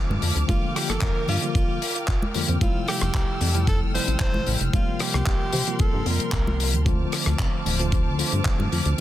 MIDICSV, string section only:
0, 0, Header, 1, 2, 480
1, 0, Start_track
1, 0, Tempo, 530973
1, 442, Time_signature, 4, 2, 24, 8
1, 8139, End_track
2, 0, Start_track
2, 0, Title_t, "String section"
2, 0, Program_c, 0, 48
2, 0, Note_on_c, 0, 72, 84
2, 0, Note_on_c, 0, 81, 79
2, 0, Note_on_c, 0, 86, 98
2, 0, Note_on_c, 0, 89, 77
2, 424, Note_off_c, 0, 81, 0
2, 425, Note_off_c, 0, 72, 0
2, 442, Note_on_c, 0, 70, 83
2, 443, Note_on_c, 0, 79, 78
2, 2327, Note_off_c, 0, 86, 0
2, 2343, Note_off_c, 0, 70, 0
2, 2363, Note_on_c, 0, 69, 87
2, 2364, Note_on_c, 0, 88, 92
2, 4263, Note_off_c, 0, 69, 0
2, 4264, Note_off_c, 0, 88, 0
2, 4287, Note_on_c, 0, 70, 85
2, 4288, Note_on_c, 0, 84, 96
2, 6166, Note_off_c, 0, 79, 0
2, 6166, Note_off_c, 0, 89, 0
2, 6185, Note_off_c, 0, 70, 0
2, 6186, Note_off_c, 0, 84, 0
2, 6199, Note_on_c, 0, 81, 77
2, 6200, Note_on_c, 0, 89, 80
2, 6202, Note_on_c, 0, 72, 85
2, 6202, Note_on_c, 0, 86, 94
2, 8101, Note_off_c, 0, 81, 0
2, 8103, Note_off_c, 0, 72, 0
2, 8139, Note_off_c, 0, 86, 0
2, 8139, Note_off_c, 0, 89, 0
2, 8139, End_track
0, 0, End_of_file